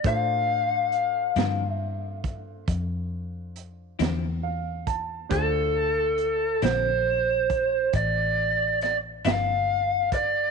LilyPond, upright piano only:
\new Staff \with { instrumentName = "Upright piano" } { \time 12/8 \key d \minor \tempo 4. = 46 << { r1 r4 f''8 a''8 | r1. | } \\ { <d' f' a' c''>1. | <d' f' a' c''>1. | } >> }